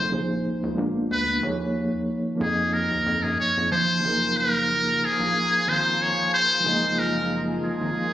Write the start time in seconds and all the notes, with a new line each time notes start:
Already playing: F#1 F#3 C4 D#4 F4 A4 C5
0.10 A#1 F3 A#3 D#4 G#4
0.14 C5
0.45 C#2
0.63 C#2
0.74 A#1 G#3 A#3 B3 D4 F4
1.11 D2 B4
1.40 D#2 F3 A#3 D#4 G#4 C#5
2.35 F3 A#3 D#4
2.41 F2 G#4
2.73 A#4
2.91 D#2
3.06 F2
3.23 F#2 G#4
3.39 F2 C#5
3.57 F2
3.72 F3 C5
3.99 F3 A#3 D#4 F4 G#4 A#4
4.04 F#1 G#4 A#4
4.37 A#4
5.02 A#1 G#4
5.20 A#1
5.67 G#1 C5
6.02 C#5
6.34 C5
6.60 F3 G#3
6.64 F#1 D#4 G#4
6.68 A#3 D#5
6.99 A#4
7.63 G#1 G#4
7.81 G#1